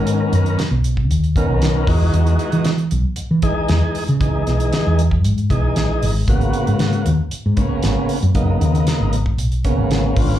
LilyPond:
<<
  \new Staff \with { instrumentName = "Tonewheel organ" } { \time 4/4 \key gis \minor \tempo 4 = 116 <dis b cis' ais'>4 r4. <dis b cis' ais'>4 <e gis dis' fis'>8~ | <e gis dis' fis'>4 r4. <e gis dis' gis'>4 r8 | <e gis dis' gis'>4. r4 <e gis dis' gis'>4 r8 | <cis ais b fis'>4. r4 <cis ais b cis'>4 r8 |
<cis ais b dis'>4. r4 <cis ais b cis'>4 <d b cis' eis'>8 | }
  \new Staff \with { instrumentName = "Fretless electric bass" } { \clef bass \time 4/4 \key gis \minor gis,8 fis,8 r16 b,,8. dis,8. b,,8. e,8 | e,8 r16 e8. b,,16 r8 e16 r8 e,16 r8 cis16~ | cis8 b,,8 r16 e,8. gis,8 b,,8 ais,,8 gis,,8 | gis,,8 r16 gis,8. dis,16 r8 gis,16 r8 gis,,16 r8 fis,16~ |
fis,8 dis,8 r16 gis,,8. b,,8. gis,,8. gis,,8 | }
  \new DrumStaff \with { instrumentName = "Drums" } \drummode { \time 4/4 hh8 hh16 hh16 <hh sn>8 hh16 bd16 hh16 hh16 <hh bd>8 <hh sn>8 <hho bd>8 | hh16 hh16 hh16 hh16 <hh sn>16 hh16 hh8 hh8 <hh bd>8 <hh sn>8 hho16 hh16 | <hh bd>8 <hh sn>16 hh16 <hh sn>8 hh16 bd16 hh16 hh16 <hh bd>8 <hh sn>8 hho8 | <hh bd>16 hh16 hh16 hh16 <hh sn>16 hh16 hh8 hh8 <hh bd>8 <hh sn>8 hho16 hh16 |
<hh bd>8 hh16 hh16 <hh sn>8 hh16 bd16 hh16 hh16 <hh bd>8 <hh sn>8 <hho bd>8 | }
>>